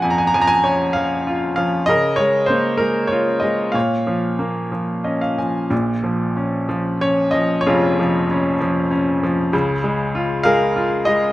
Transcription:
grand piano
Already playing: A#2 F3 C#4 G#4 C#5 F5 F#5 G#5
0.02 F2 G#5
0.10 A#5
0.18 G#5
0.27 A#5
0.34 F3 G#5
0.42 A#5
0.47 G#5
0.64 C#4 C#5
0.93 F3 F5
1.27 F4
1.56 F3 F5
1.86 C#3 A#4 D#5
2.16 G#3 C#5
2.46 A#3 C5
2.77 G#3 A#4
3.07 C#5
3.12 F4
3.40 G#3 D#5
3.72 A#2 C#5 F5
4.07 F3
4.39 A#3
4.72 F3
5.04 C#4 D#5
5.21 F5
5.38 F3 G#5
5.70 A#1 A#2
6.04 F3
6.36 C#4
6.69 F3
7.01 C#4 C#5
7.31 F3 D#5
7.61 C#5
7.67 F1 F2 F4 G#4
7.99 F3
8.31 C#4
8.61 F3
8.91 C#4
9.23 F3
9.53 C#2 C#3
9.84 G#3
10.15 F4
10.43 G#3 G#4 A#4 F5
10.76 F4
11.05 G#3 D#5

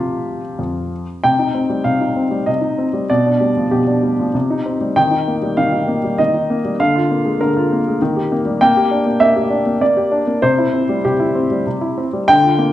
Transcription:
grand piano
Already playing: C3 F3 C4 F4 G4
0.59 F2
1.24 C3 G5
1.39 D#4
1.54 C4
1.69 G3
1.84 C3 F5
2.00 D#4
2.16 C4
2.31 G3
2.46 C3 D#5
2.61 D#4
2.78 C4
2.93 G3
3.10 B2 D5
3.26 D4
3.41 G3
3.57 F3
3.71 B2 G4
3.87 D4
4.03 G3
4.20 F3
4.34 C3
4.50 D#4
4.66 C4
4.81 G3
4.96 D#3 G5
5.11 D#4
5.28 A#3
5.42 G3
5.57 D#3 F5
5.72 D#4
5.88 A#3
6.04 G3
6.18 D#3 D#5
6.34 D#4
6.50 A#3
6.65 G3
6.80 D3 F5
6.96 F4
7.11 A#3
7.25 G#3
7.41 D3 A#4
7.57 F4
7.72 A#3
7.87 G#3
8.02 D#3
8.16 G4
8.32 A#3
8.45 G3
8.61 A#3 G5
8.77 G4
8.91 D4
9.06 A#3
9.20 A#3 E5
9.36 G4
9.50 D4
9.66 A#3
9.81 A#3 D5
9.97 G4
10.12 D4
10.27 A#3
10.42 C3 C5
10.58 E4
10.73 C4
10.89 G3
11.05 C3 G4
11.20 E4
11.35 C4
11.51 G3
11.67 C3
11.81 E4
11.98 C4
12.13 G3
12.28 D3 G5
12.43 F4
12.58 A#3

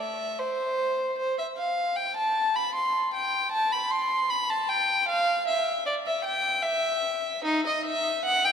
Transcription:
violin
0.00 E5
0.39 C5
1.18 C5
1.39 E5
1.57 F5
1.96 G5
2.17 A5
2.56 B5
2.75 C6
3.14 G5
3.52 A5
3.72 B5
3.91 C6
4.30 B5
4.50 A5
4.69 G5
5.09 F5
5.48 E5
5.86 D5
6.07 E5
6.25 G5
6.63 E5
7.45 D#4
7.67 D#5
7.85 E5
8.25 F#5
8.45 G5

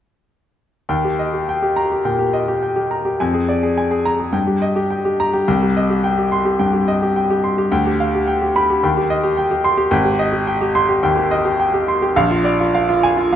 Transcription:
grand piano
0.89 D#2 G5
1.04 G4
1.19 D#5
1.34 G4
1.49 G5
1.62 G4
1.76 A#5
1.92 G4
2.05 A#2 G5
2.19 G4
2.34 D#5
2.48 G4
2.62 G5
2.76 G4
2.91 A#5
3.05 G4
3.20 F2 G#5
3.34 G#4
3.49 D5
3.63 G#4
3.78 G#5
3.91 G#4
4.05 A#5
4.20 G#4
4.33 G2 G5
4.47 G4
4.62 D#5
4.76 G4
4.90 G5
5.05 G4
5.20 A#5
5.33 G4
5.48 C2 G5
5.63 G4
5.77 D#5
5.90 G4
6.04 G5
6.18 G4
6.32 C6
6.45 G4
6.59 G2 G5
6.73 G4
6.88 D#5
7.02 G4
7.16 G5
7.30 G4
7.44 C6
7.58 G4
7.72 D2 G5
7.86 G4
8.00 F5
8.15 G4
8.27 G5
8.42 G4
8.56 B5
8.70 G4
8.83 D#2 G5
8.97 G4
9.10 D#5
9.24 G4
9.37 G5
9.51 G4
9.64 C6
9.77 G4
9.91 G#1 G5
10.05 G4
10.19 D#5
10.32 G4
10.47 G5
10.61 G4
10.75 C6
10.89 G4
11.03 D#2 G5
11.17 G4
11.31 D#5
11.45 G4
11.60 G5
11.74 G4
11.88 C6
12.02 G4
12.16 A#1 F5
12.31 F4
12.44 D5
12.60 F4
12.75 F5
12.89 F4
13.03 G#5
13.17 F4
13.32 F2 F5

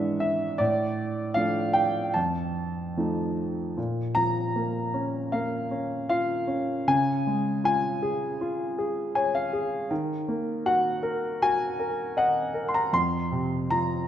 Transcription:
grand piano
Already playing: G#2 E3 G#3 D4 E5 F#5
0.20 E5
0.58 A2 D5
1.34 F3 A3 D4 F5
1.73 G5
2.14 F2 A5
2.97 F3 A3 D#4
3.77 A#2
4.15 F3 A#5
4.56 A#3
4.94 C#4
5.32 A#3 F5
5.71 C#4
6.09 F4 F5
6.47 C#4
6.88 C#3 G#5
7.27 G#3
7.64 F4 G#5
8.02 G#4
8.41 F4
8.78 G#4
9.15 C#5 G#5
9.35 F5
9.53 G#4
9.91 D#3
10.28 A#3
10.66 F#4 F#5
11.03 A#4
11.42 F#4 G#5
11.79 A#4
12.17 D#5 F#5
12.54 A#4
12.68 C6
12.74 A#5
12.93 F2 C6
13.32 C3
13.70 F3 A#5

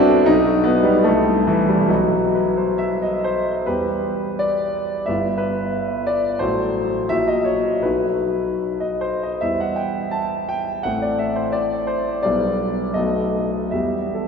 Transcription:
grand piano
Already playing: C2 B3 C4 D4 E4 F#4 A4 E5
0.09 A4
0.26 B1 D#4
0.46 F#4
0.64 B3 D#5
0.83 G3 B4
1.04 C2 A3
1.28 E4
1.47 E3 E5
1.69 G3 A4
1.79 B1
1.86 F#3 F#4 B4 D#5
2.35 B4
2.57 C5
2.78 E5
3.02 D#5
3.24 C5
3.67 E2 G3 G4 B4
4.39 D5
5.06 G1 G3 E4 B4 E5
5.38 B4
6.07 D5
6.39 A1 F#3 F#4 A4 C5
7.09 A#1 F#3 E4 F#4 E5
7.28 D#5
7.44 C#5
7.83 B1 F#3 D#4 F#4 B4
8.80 D#5
9.01 C5
9.23 D#5
9.41 E2 G3 B3 E4 E5
9.60 F#5
9.76 G5
10.11 A5
10.49 G5
10.83 A1 A3 C4 E4 F#5
11.02 D5
11.19 E5
11.36 C5
11.52 D5
11.87 C5
12.22 B1 G3 B3 E4 D5
12.94 B1 A3 B3 F#4 D#5
13.71 E2 G3 B3 G4 E5
14.15 A4

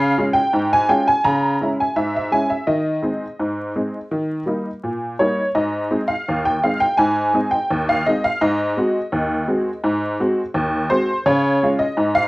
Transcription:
honky-tonk piano
Already playing: C#3 F5
0.18 G#3 C#4 F4
0.33 G5
0.53 G#2
0.73 G#5
0.88 G#3 C#4 F4 G5
1.07 G#5
1.24 C#3 A#5
1.61 G#3 C#4 E4
1.80 G#5
1.96 G#2 E5
2.16 E5
2.31 G#3 C#4 E4 G#5
2.50 E5
2.67 D#3 D#5
3.02 G#3 C4 D#4
3.39 G#2
3.75 G#3 C4 D#4
4.11 D#3
4.46 G3 A#3 D#4
4.84 A#2
5.19 G3 A#3 D#4 C#5
5.55 G#2 D#5
5.91 G#3 C4 D#4
6.08 F5
6.29 D#2
6.46 G5
6.64 G#3 C4 D#4 F5
6.80 G5
6.98 G#2 G#5
7.34 G#3 C4 D#4
7.51 G5
7.71 D#2
7.89 F5
8.07 G#3 C4 D#4 D#5
8.24 F5
8.41 G#2 D#5
8.77 G#3 C4 F#4
9.12 D#2
9.48 G#3 C4 F#4
9.84 G#2
10.20 G#3 C4 F#4
10.54 D#2
10.90 G#3 C4 F#4 C5
11.26 C#3 C#5
11.63 G#3 C#4 F4
11.79 D#5
11.97 G#2
12.15 F5

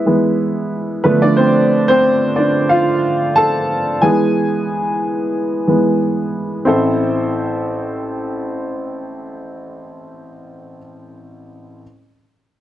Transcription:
upright piano
Already playing: E3 G#3 B3 E4 E5
0.06 E3 G#3 B3
1.04 D3 F3 A3 B3 B4
1.22 D4 D5
1.37 C4 C5
1.88 C4 C5
2.36 D4 D5
2.69 F4 F5
3.36 A4 A5
4.02 E3 G#3 B3 G#4 G#5
5.67 E3 G#3 B3
6.65 A1 C4 E4 A4 C5

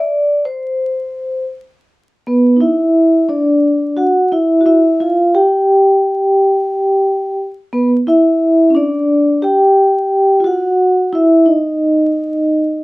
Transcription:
vibraphone
0.00 D5
0.45 C5
2.27 B3 B4
2.56 D#4
2.61 E4 E5
3.29 D4 D5
3.97 F#4 F#5
4.32 E4 E5
4.61 F#4
4.66 E4 E5
5.00 F4 F5
5.35 G4 G5
7.73 B3 B4
8.07 E4 E5
8.70 C#4
8.75 D4 D5
9.42 G4 G5
10.40 F4
10.44 F#4 F#5
11.13 E4 E5
11.46 D#4 D#5

